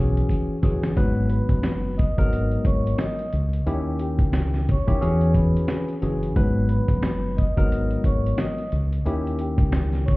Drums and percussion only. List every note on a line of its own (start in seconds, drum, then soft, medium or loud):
0.17 closed hi-hat medium
0.29 kick medium
0.29 closed hi-hat medium
0.29 sleigh bells medium
0.63 kick medium
0.63 closed hi-hat medium
0.63 sleigh bells medium
0.83 snare medium
0.83 closed hi-hat medium
0.97 kick loud
0.97 closed hi-hat medium
1.30 closed hi-hat medium
1.49 kick medium
1.49 closed hi-hat medium
1.63 snare loud
1.63 snare medium
1.63 closed hi-hat medium
1.99 kick medium
1.99 closed hi-hat medium
2.18 kick loud
2.18 closed hi-hat soft
2.33 closed hi-hat medium
2.51 closed hi-hat soft
2.65 kick loud
2.65 closed hi-hat medium
2.87 closed hi-hat medium
2.98 snare loud
2.98 snare medium
2.98 closed hi-hat medium
3.19 closed hi-hat soft
3.33 closed hi-hat medium
3.53 closed hi-hat medium
3.67 closed hi-hat medium
3.99 closed hi-hat medium
4.19 kick medium
4.19 closed hi-hat medium
4.33 snare loud
4.33 snare medium
4.33 closed hi-hat medium
4.54 snare soft
4.69 kick medium
4.69 closed hi-hat medium
4.88 kick loud
4.88 closed hi-hat soft
5.02 closed hi-hat medium
5.21 closed hi-hat soft
5.34 kick loud
5.34 closed hi-hat medium
5.57 closed hi-hat medium
5.68 snare loud
5.68 snare medium
5.68 closed hi-hat medium
5.88 closed hi-hat soft
6.02 closed hi-hat medium
6.23 closed hi-hat medium
6.36 kick loud
6.36 closed hi-hat medium
6.69 closed hi-hat medium
6.88 kick medium
6.88 closed hi-hat medium
7.03 snare loud
7.03 snare medium
7.03 closed hi-hat medium
7.38 kick medium
7.38 closed hi-hat medium
7.57 kick loud
7.57 closed hi-hat soft
7.72 closed hi-hat medium
7.91 closed hi-hat soft
8.04 kick medium
8.04 closed hi-hat medium
8.26 closed hi-hat medium
8.38 snare loud
8.38 snare medium
8.38 closed hi-hat medium
8.58 closed hi-hat soft
8.72 closed hi-hat medium
8.93 closed hi-hat medium
9.06 closed hi-hat medium
9.27 closed hi-hat soft
9.39 closed hi-hat medium
9.58 kick medium
9.58 closed hi-hat medium
9.72 snare loud
9.72 snare medium
9.72 closed hi-hat medium
9.93 snare soft
9.93 closed hi-hat soft
10.08 kick medium
10.08 closed hi-hat medium